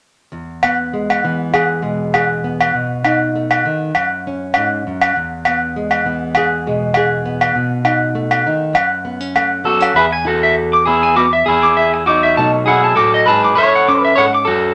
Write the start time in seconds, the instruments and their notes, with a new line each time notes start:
0.32 nylon-string guitar E2
0.63 nylon-string guitar B3, low agogo
0.94 nylon-string guitar G#3
1.10 low agogo
1.24 nylon-string guitar E3 B3
1.54 nylon-string guitar G#4, low agogo
1.82 nylon-string guitar B2 G#3
2.14 nylon-string guitar G#4, low agogo
2.44 nylon-string guitar B3
2.61 low agogo
2.74 nylon-string guitar B2
3.04 nylon-string guitar D#4, low agogo
3.35 nylon-string guitar A3
3.51 low agogo
3.65 nylon-string guitar D#3 D#4
3.95 nylon-string guitar F#2, low agogo
4.27 nylon-string guitar C#4
4.54 nylon-string guitar G#2, low agogo
4.87 nylon-string guitar F#2
5.01 low agogo
5.16 nylon-string guitar E2
5.45 nylon-string guitar B3, low agogo
5.76 nylon-string guitar G#3
5.91 low agogo
6.05 nylon-string guitar E3 B3
6.35 nylon-string guitar G#4, low agogo
6.67 nylon-string guitar B2 G#3
6.94 nylon-string guitar G#4, low agogo
7.25 nylon-string guitar B3
7.41 low agogo
7.55 nylon-string guitar B2
7.85 nylon-string guitar D#4, low agogo
8.15 nylon-string guitar A3
8.31 low agogo
8.46 nylon-string guitar D#3 D#4
8.73 nylon-string guitar F#2, low agogo
9.05 nylon-string guitar B3
9.21 nylon-string guitar C#4
9.36 nylon-string guitar A3, low agogo
9.64 nylon-string guitar F#3 B3, clean electric guitar F#4 A4
9.81 nylon-string guitar C#4, low agogo
9.94 nylon-string guitar E2, clean electric guitar G#4 B4 E5
10.12 clean electric guitar G#5
10.25 nylon-string guitar E4, clean electric guitar F#4 A4
10.43 clean electric guitar E5
10.73 clean electric guitar D6
10.86 nylon-string guitar B3, clean electric guitar E4 G#4
11.03 clean electric guitar G#5
11.16 clean electric guitar B3 F#4 D6
11.33 clean electric guitar E5
11.46 nylon-string guitar E2, clean electric guitar E4 G#4
11.63 clean electric guitar D6
11.77 clean electric guitar E5
11.94 muted clean electric guitar stroke
12.06 clean electric guitar D#4 F#4 D6
12.23 clean electric guitar E5
12.37 nylon-string guitar B2 F#3 A3 D#4, clean electric guitar A5
12.66 clean electric guitar E4 G#4 F#5
12.84 clean electric guitar A5
12.96 nylon-string guitar A2, clean electric guitar F#4 A4 D6
13.14 clean electric guitar D#5
13.26 nylon-string guitar G#2, clean electric guitar G#4 B4 A5
13.44 clean electric guitar D6
13.55 nylon-string guitar F#2, clean electric guitar A4 C#5 E5
13.75 clean electric guitar F#5
13.88 nylon-string guitar C#4, clean electric guitar D6
13.99 clean electric guitar B4
14.05 clean electric guitar E5
14.16 nylon-string guitar G#2, clean electric guitar A4 C#5 F#5
14.35 clean electric guitar D6
14.45 nylon-string guitar F#2, clean electric guitar F#4 A4